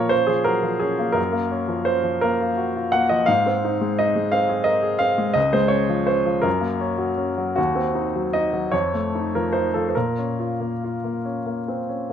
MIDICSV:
0, 0, Header, 1, 2, 480
1, 0, Start_track
1, 0, Key_signature, -5, "minor"
1, 0, Tempo, 700935
1, 807, Time_signature, 6, 3, 24, 8
1, 3675, Tempo, 727273
1, 4635, Tempo, 768246
1, 6075, Tempo, 819672
1, 6555, Tempo, 859599
1, 7774, End_track
2, 0, Start_track
2, 0, Title_t, "Grand piano"
2, 0, Program_c, 0, 0
2, 0, Control_c, 0, 64, 127
2, 0, Note_on_c, 0, 46, 51
2, 0, Note_on_c, 0, 53, 39
2, 0, Note_on_c, 0, 58, 41
2, 0, Note_on_c, 0, 61, 44
2, 0, Note_on_c, 0, 65, 64
2, 0, Note_on_c, 0, 70, 59
2, 0, Note_on_c, 0, 73, 70
2, 64, Note_on_c, 0, 72, 76
2, 74, Note_off_c, 0, 61, 0
2, 74, Note_on_c, 0, 61, 43
2, 92, Note_off_c, 0, 65, 0
2, 92, Control_c, 0, 64, 0
2, 95, Note_off_c, 0, 70, 0
2, 96, Note_off_c, 0, 58, 0
2, 98, Note_off_c, 0, 73, 0
2, 147, Note_off_c, 0, 53, 0
2, 183, Note_on_c, 0, 68, 61
2, 191, Note_on_c, 0, 53, 39
2, 197, Note_off_c, 0, 72, 0
2, 206, Control_c, 0, 64, 127
2, 275, Note_off_c, 0, 61, 0
2, 304, Note_on_c, 0, 70, 70
2, 312, Note_on_c, 0, 54, 34
2, 316, Note_off_c, 0, 68, 0
2, 392, Note_off_c, 0, 53, 0
2, 430, Note_on_c, 0, 53, 39
2, 440, Note_off_c, 0, 54, 0
2, 544, Note_on_c, 0, 68, 62
2, 555, Note_off_c, 0, 70, 0
2, 558, Note_on_c, 0, 61, 42
2, 630, Note_off_c, 0, 53, 0
2, 676, Note_on_c, 0, 58, 41
2, 754, Note_off_c, 0, 61, 0
2, 770, Note_on_c, 0, 70, 65
2, 775, Note_off_c, 0, 46, 0
2, 781, Note_on_c, 0, 42, 50
2, 796, Note_off_c, 0, 68, 0
2, 802, Note_off_c, 0, 58, 0
2, 818, Control_c, 0, 64, 0
2, 905, Note_on_c, 0, 58, 42
2, 924, Control_c, 0, 64, 127
2, 1034, Note_on_c, 0, 61, 44
2, 1108, Note_off_c, 0, 58, 0
2, 1150, Note_on_c, 0, 53, 37
2, 1233, Note_off_c, 0, 61, 0
2, 1267, Note_on_c, 0, 72, 68
2, 1269, Note_off_c, 0, 70, 0
2, 1279, Note_on_c, 0, 61, 39
2, 1351, Note_off_c, 0, 53, 0
2, 1394, Note_on_c, 0, 53, 39
2, 1477, Note_off_c, 0, 61, 0
2, 1516, Note_on_c, 0, 70, 70
2, 1519, Note_off_c, 0, 72, 0
2, 1528, Note_on_c, 0, 58, 42
2, 1596, Note_off_c, 0, 53, 0
2, 1648, Note_on_c, 0, 65, 42
2, 1722, Note_off_c, 0, 58, 0
2, 1761, Note_on_c, 0, 66, 38
2, 1841, Note_off_c, 0, 65, 0
2, 1885, Note_off_c, 0, 66, 0
2, 1888, Note_on_c, 0, 65, 42
2, 1999, Note_on_c, 0, 78, 72
2, 2003, Note_off_c, 0, 70, 0
2, 2015, Note_on_c, 0, 58, 43
2, 2080, Note_off_c, 0, 65, 0
2, 2119, Note_on_c, 0, 75, 64
2, 2124, Note_off_c, 0, 78, 0
2, 2127, Note_on_c, 0, 53, 42
2, 2204, Note_off_c, 0, 58, 0
2, 2209, Note_off_c, 0, 42, 0
2, 2232, Note_on_c, 0, 77, 78
2, 2244, Note_off_c, 0, 75, 0
2, 2247, Note_on_c, 0, 44, 57
2, 2248, Note_off_c, 0, 53, 0
2, 2263, Control_c, 0, 64, 0
2, 2360, Control_c, 0, 64, 127
2, 2372, Note_on_c, 0, 60, 46
2, 2496, Note_on_c, 0, 63, 43
2, 2562, Note_off_c, 0, 60, 0
2, 2611, Note_on_c, 0, 56, 42
2, 2682, Note_off_c, 0, 63, 0
2, 2717, Note_off_c, 0, 77, 0
2, 2729, Note_on_c, 0, 75, 71
2, 2735, Note_on_c, 0, 63, 45
2, 2798, Note_off_c, 0, 56, 0
2, 2847, Note_on_c, 0, 56, 39
2, 2917, Note_off_c, 0, 63, 0
2, 2955, Note_on_c, 0, 77, 72
2, 2961, Note_off_c, 0, 75, 0
2, 2963, Note_on_c, 0, 60, 47
2, 3032, Note_off_c, 0, 56, 0
2, 3077, Note_on_c, 0, 68, 44
2, 3148, Note_off_c, 0, 60, 0
2, 3177, Note_on_c, 0, 75, 71
2, 3186, Note_on_c, 0, 70, 38
2, 3191, Note_off_c, 0, 77, 0
2, 3264, Note_off_c, 0, 68, 0
2, 3304, Note_on_c, 0, 68, 46
2, 3308, Note_off_c, 0, 70, 0
2, 3414, Note_on_c, 0, 77, 73
2, 3423, Note_off_c, 0, 75, 0
2, 3427, Note_on_c, 0, 60, 42
2, 3499, Note_off_c, 0, 68, 0
2, 3548, Note_on_c, 0, 56, 43
2, 3623, Note_off_c, 0, 60, 0
2, 3645, Note_off_c, 0, 44, 0
2, 3654, Note_on_c, 0, 75, 77
2, 3664, Note_on_c, 0, 37, 51
2, 3666, Note_off_c, 0, 77, 0
2, 3672, Note_off_c, 0, 56, 0
2, 3687, Control_c, 0, 64, 0
2, 3782, Note_on_c, 0, 72, 70
2, 3783, Note_off_c, 0, 75, 0
2, 3785, Control_c, 0, 64, 127
2, 3786, Note_on_c, 0, 56, 46
2, 3883, Note_on_c, 0, 73, 69
2, 3896, Note_on_c, 0, 61, 46
2, 3907, Note_off_c, 0, 72, 0
2, 3982, Note_off_c, 0, 56, 0
2, 4021, Note_on_c, 0, 53, 42
2, 4097, Note_off_c, 0, 61, 0
2, 4136, Note_on_c, 0, 72, 65
2, 4139, Note_off_c, 0, 73, 0
2, 4146, Note_on_c, 0, 61, 45
2, 4220, Note_off_c, 0, 53, 0
2, 4263, Note_on_c, 0, 53, 41
2, 4342, Note_off_c, 0, 61, 0
2, 4367, Note_off_c, 0, 37, 0
2, 4368, Note_on_c, 0, 70, 66
2, 4377, Note_on_c, 0, 42, 53
2, 4385, Note_off_c, 0, 72, 0
2, 4388, Note_off_c, 0, 53, 0
2, 4406, Control_c, 0, 64, 0
2, 4491, Note_on_c, 0, 58, 42
2, 4501, Control_c, 0, 64, 127
2, 4621, Note_off_c, 0, 70, 0
2, 4624, Note_on_c, 0, 61, 44
2, 4693, Note_off_c, 0, 58, 0
2, 4735, Note_on_c, 0, 54, 40
2, 4816, Note_off_c, 0, 61, 0
2, 4853, Note_on_c, 0, 61, 40
2, 4932, Note_off_c, 0, 54, 0
2, 4982, Note_on_c, 0, 54, 39
2, 5050, Note_off_c, 0, 61, 0
2, 5076, Note_off_c, 0, 42, 0
2, 5094, Note_on_c, 0, 66, 65
2, 5103, Note_off_c, 0, 54, 0
2, 5108, Note_on_c, 0, 39, 49
2, 5118, Control_c, 0, 64, 0
2, 5218, Note_on_c, 0, 60, 43
2, 5234, Control_c, 0, 64, 127
2, 5340, Note_on_c, 0, 63, 40
2, 5410, Note_off_c, 0, 60, 0
2, 5469, Note_on_c, 0, 54, 37
2, 5532, Note_off_c, 0, 63, 0
2, 5575, Note_off_c, 0, 66, 0
2, 5580, Note_on_c, 0, 75, 67
2, 5586, Note_on_c, 0, 63, 38
2, 5658, Note_off_c, 0, 54, 0
2, 5705, Note_on_c, 0, 54, 37
2, 5779, Note_off_c, 0, 63, 0
2, 5805, Note_off_c, 0, 39, 0
2, 5818, Note_on_c, 0, 73, 66
2, 5825, Note_off_c, 0, 75, 0
2, 5827, Note_off_c, 0, 54, 0
2, 5828, Note_on_c, 0, 41, 47
2, 5836, Control_c, 0, 64, 0
2, 5946, Control_c, 0, 64, 127
2, 5957, Note_on_c, 0, 57, 38
2, 6089, Note_on_c, 0, 63, 37
2, 6149, Note_off_c, 0, 57, 0
2, 6189, Note_off_c, 0, 73, 0
2, 6207, Note_on_c, 0, 70, 53
2, 6211, Note_on_c, 0, 53, 35
2, 6271, Note_off_c, 0, 63, 0
2, 6309, Note_on_c, 0, 72, 57
2, 6318, Note_off_c, 0, 70, 0
2, 6318, Note_on_c, 0, 63, 37
2, 6392, Note_off_c, 0, 53, 0
2, 6430, Note_off_c, 0, 72, 0
2, 6434, Note_on_c, 0, 69, 52
2, 6443, Note_on_c, 0, 53, 32
2, 6508, Note_off_c, 0, 63, 0
2, 6509, Note_off_c, 0, 69, 0
2, 6520, Note_on_c, 0, 72, 39
2, 6535, Note_off_c, 0, 41, 0
2, 6558, Note_on_c, 0, 70, 55
2, 6560, Note_off_c, 0, 53, 0
2, 6560, Note_off_c, 0, 72, 0
2, 6565, Control_c, 0, 64, 0
2, 6567, Note_on_c, 0, 46, 43
2, 6661, Control_c, 0, 64, 127
2, 6688, Note_on_c, 0, 61, 33
2, 6806, Note_on_c, 0, 65, 33
2, 6875, Note_off_c, 0, 61, 0
2, 6923, Note_on_c, 0, 58, 30
2, 6995, Note_off_c, 0, 65, 0
2, 7055, Note_on_c, 0, 65, 31
2, 7113, Note_off_c, 0, 58, 0
2, 7167, Note_on_c, 0, 58, 29
2, 7238, Note_off_c, 0, 65, 0
2, 7279, Note_off_c, 0, 70, 0
2, 7283, Note_on_c, 0, 61, 31
2, 7353, Note_off_c, 0, 58, 0
2, 7402, Note_on_c, 0, 58, 30
2, 7470, Note_off_c, 0, 61, 0
2, 7525, Note_on_c, 0, 60, 26
2, 7590, Note_off_c, 0, 58, 0
2, 7640, Note_off_c, 0, 60, 0
2, 7640, Note_on_c, 0, 61, 30
2, 7757, Note_on_c, 0, 58, 29
2, 7774, Note_off_c, 0, 46, 0
2, 7774, Note_off_c, 0, 58, 0
2, 7774, Note_off_c, 0, 61, 0
2, 7774, End_track
0, 0, End_of_file